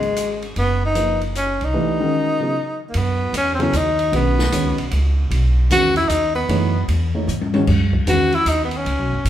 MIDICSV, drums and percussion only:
0, 0, Header, 1, 2, 480
1, 0, Start_track
1, 0, Tempo, 395517
1, 678, Time_signature, 3, 2, 24, 8
1, 11279, End_track
2, 0, Start_track
2, 0, Title_t, "Drums"
2, 32, Note_on_c, 9, 51, 33
2, 153, Note_off_c, 9, 51, 0
2, 200, Note_on_c, 9, 44, 50
2, 200, Note_on_c, 9, 51, 57
2, 321, Note_off_c, 9, 44, 0
2, 321, Note_off_c, 9, 51, 0
2, 514, Note_on_c, 9, 51, 36
2, 636, Note_off_c, 9, 51, 0
2, 680, Note_on_c, 9, 51, 49
2, 801, Note_off_c, 9, 51, 0
2, 1155, Note_on_c, 9, 44, 51
2, 1155, Note_on_c, 9, 51, 53
2, 1276, Note_off_c, 9, 44, 0
2, 1276, Note_off_c, 9, 51, 0
2, 1473, Note_on_c, 9, 51, 35
2, 1595, Note_off_c, 9, 51, 0
2, 1642, Note_on_c, 9, 44, 53
2, 1642, Note_on_c, 9, 51, 47
2, 1764, Note_off_c, 9, 44, 0
2, 1764, Note_off_c, 9, 51, 0
2, 1952, Note_on_c, 9, 51, 34
2, 2073, Note_off_c, 9, 51, 0
2, 3566, Note_on_c, 9, 51, 67
2, 3687, Note_off_c, 9, 51, 0
2, 4052, Note_on_c, 9, 44, 46
2, 4052, Note_on_c, 9, 51, 68
2, 4173, Note_off_c, 9, 44, 0
2, 4173, Note_off_c, 9, 51, 0
2, 4365, Note_on_c, 9, 51, 42
2, 4486, Note_off_c, 9, 51, 0
2, 4531, Note_on_c, 9, 44, 49
2, 4531, Note_on_c, 9, 51, 58
2, 4652, Note_off_c, 9, 44, 0
2, 4652, Note_off_c, 9, 51, 0
2, 4840, Note_on_c, 9, 51, 43
2, 4961, Note_off_c, 9, 51, 0
2, 5012, Note_on_c, 9, 51, 57
2, 5133, Note_off_c, 9, 51, 0
2, 5326, Note_on_c, 9, 38, 60
2, 5447, Note_off_c, 9, 38, 0
2, 5489, Note_on_c, 9, 44, 49
2, 5489, Note_on_c, 9, 51, 68
2, 5610, Note_off_c, 9, 44, 0
2, 5610, Note_off_c, 9, 51, 0
2, 5802, Note_on_c, 9, 51, 47
2, 5923, Note_off_c, 9, 51, 0
2, 5963, Note_on_c, 9, 51, 55
2, 6084, Note_off_c, 9, 51, 0
2, 6448, Note_on_c, 9, 51, 61
2, 6569, Note_off_c, 9, 51, 0
2, 6924, Note_on_c, 9, 44, 65
2, 6924, Note_on_c, 9, 51, 65
2, 7046, Note_off_c, 9, 44, 0
2, 7046, Note_off_c, 9, 51, 0
2, 7230, Note_on_c, 9, 51, 46
2, 7352, Note_off_c, 9, 51, 0
2, 7397, Note_on_c, 9, 44, 50
2, 7397, Note_on_c, 9, 51, 58
2, 7519, Note_off_c, 9, 44, 0
2, 7519, Note_off_c, 9, 51, 0
2, 7879, Note_on_c, 9, 51, 56
2, 8000, Note_off_c, 9, 51, 0
2, 8356, Note_on_c, 9, 51, 57
2, 8477, Note_off_c, 9, 51, 0
2, 8840, Note_on_c, 9, 44, 52
2, 8961, Note_off_c, 9, 44, 0
2, 8996, Note_on_c, 9, 48, 57
2, 9117, Note_off_c, 9, 48, 0
2, 9147, Note_on_c, 9, 48, 83
2, 9269, Note_off_c, 9, 48, 0
2, 9312, Note_on_c, 9, 49, 68
2, 9313, Note_on_c, 9, 36, 74
2, 9433, Note_off_c, 9, 49, 0
2, 9435, Note_off_c, 9, 36, 0
2, 9622, Note_on_c, 9, 36, 60
2, 9744, Note_off_c, 9, 36, 0
2, 9792, Note_on_c, 9, 44, 59
2, 9792, Note_on_c, 9, 51, 68
2, 9914, Note_off_c, 9, 44, 0
2, 9914, Note_off_c, 9, 51, 0
2, 10102, Note_on_c, 9, 51, 44
2, 10223, Note_off_c, 9, 51, 0
2, 10267, Note_on_c, 9, 44, 53
2, 10267, Note_on_c, 9, 51, 64
2, 10388, Note_off_c, 9, 44, 0
2, 10388, Note_off_c, 9, 51, 0
2, 10572, Note_on_c, 9, 51, 44
2, 10693, Note_off_c, 9, 51, 0
2, 10753, Note_on_c, 9, 51, 55
2, 10874, Note_off_c, 9, 51, 0
2, 11231, Note_on_c, 9, 44, 62
2, 11231, Note_on_c, 9, 51, 63
2, 11279, Note_off_c, 9, 44, 0
2, 11279, Note_off_c, 9, 51, 0
2, 11279, End_track
0, 0, End_of_file